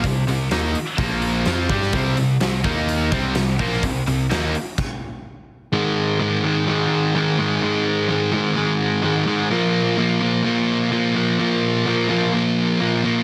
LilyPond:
<<
  \new Staff \with { instrumentName = "Distorted electric guitar" } { \clef bass \time 4/4 \key aes \lydian \tempo 4 = 127 <c g>8 <c g>8 <ees bes ees'>8 r8 <bes, f bes>4 <f c' f'>8 <g d' g'>8 | <c g c'>8 <c g>8 <c g>8 <ees bes ees'>4 <c g c'>8 <c g>8 <bes, f bes>8 | <c g>8 <c g>8 <ees bes ees'>8 r2 r8 | r1 |
r1 | r1 | r1 | }
  \new Staff \with { instrumentName = "Overdriven electric guitar" } { \clef bass \time 4/4 \key aes \lydian <c g>8 <c g>8 <ees bes ees'>8 r8 <bes, f bes>4 <f c' f'>8 <g d' g'>8 | <c g c'>8 <c g>8 <c g>8 <ees bes ees'>4 <c g c'>8 <c g>8 <bes, f bes>8 | <c g>8 <c g>8 <ees bes ees'>8 r2 r8 | r1 |
r1 | r1 | r1 | }
  \new Staff \with { instrumentName = "Distorted electric guitar" } { \clef bass \time 4/4 \key aes \lydian <c g>8 <c g>8 <ees bes ees'>8 r8 <bes, f bes>4 <f c' f'>8 <g d' g'>8 | <c g c'>8 <c g>8 <c g>8 <ees bes ees'>4 <c g c'>8 <c g>8 <bes, f bes>8 | <c g>8 <c g>8 <ees bes ees'>8 r2 r8 | <aes, ees aes>4 <aes, ees aes>8 <aes, ees aes>8 <aes, ees aes>4 <aes, ees aes>8 <aes, ees aes>8 |
<aes, ees aes>4 <aes, ees aes>8 <aes, ees aes>8 <aes, ees aes>4 <aes, ees aes>8 <aes, ees aes>8 | <bes, f bes>4 <bes, f bes>8 <bes, f bes>8 <bes, f bes>4 <bes, f bes>8 <bes, f bes>8 | <bes, f bes>4 <bes, f bes>8 <bes, f bes>8 <bes, f bes>4 <bes, f bes>8 <bes, f bes>8 | }
  \new Staff \with { instrumentName = "Picked electric bass" } { \clef bass \time 4/4 \key aes \lydian c,8 c,8 ees,8 r8 bes,,4 f,8 g,8 | c,8 c,8 c,8 ees,4 c,8 c,8 bes,,8 | c,8 c,8 ees,8 r2 r8 | r1 |
r1 | r1 | r1 | }
  \new DrumStaff \with { instrumentName = "Drums" } \drummode { \time 4/4 <hho bd>8 hho8 <hho sn>8 hho8 <hho bd>8 hho8 <hho sn>8 <hho bd>16 sn16 | <hho bd>8 hho8 <hho sn>8 <hho bd>8 hho8 <hho bd>8 <hho sn>8 <hho bd>16 sn16 | <hho bd>8 hho8 <hho sn>8 hho8 <cymc bd>4 r4 | r4 r4 r4 r4 |
r4 r4 r4 r4 | r4 r4 r4 r4 | r4 r4 r4 r4 | }
>>